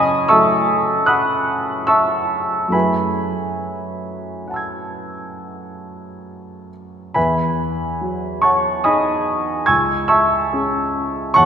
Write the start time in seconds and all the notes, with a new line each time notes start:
Already playing: F#2 C#3 C#5 D#5 F#5 G#5 A5 B5 C#6 D#6
0.28 F#3 A3 E4 A4 E5 A5 C#6 E6
1.06 F#5 B5 D#6 F#6
1.87 E5 A5 C#6 E6
2.69 F#2 F#3 A3 E4 B5
2.73 G#4 B4 E5 G#5
4.48 F#5 A5
4.54 E6 G#6
7.14 E2 B4 E5 G#5 B5
8.01 F#3
8.42 C#5 F#5 A5 C#6
8.84 D#4 G#4 D#5 G#5 B5 D#6
9.66 C#2 G#5 C#6 E6 G#6
10.08 E5 A5 C#6 E6
10.53 C#4 G#4
11.34 E2 C#5 F#5 A5 C#6